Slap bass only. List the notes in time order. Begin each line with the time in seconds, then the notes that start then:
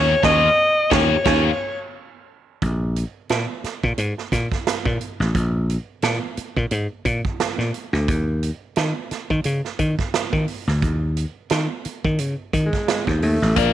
Already playing: D#2
0.23 D#2
0.91 D#2
1.26 D#2
2.62 A#1
3.30 A#2
3.64 muted slap bass stroke
3.84 A#2
3.98 G#2
4.32 A#2
4.85 A#2
5.20 A1
5.35 A#1
6.03 A#2
6.38 muted slap bass stroke
6.57 A#2
6.71 G#2
7.05 A#2
7.58 A#2
7.93 D2
8.08 D#2
8.77 D#3
9.11 muted slap bass stroke
9.30 D#3
9.45 C#3
9.79 D#3
10.33 D#3
10.67 D2
10.82 D#2
11.51 D#3
11.86 muted slap bass stroke
12.05 D#3
12.19 C#3
12.53 D#3
13.07 D#2
13.23 D#2
13.42 A1
13.57 A#1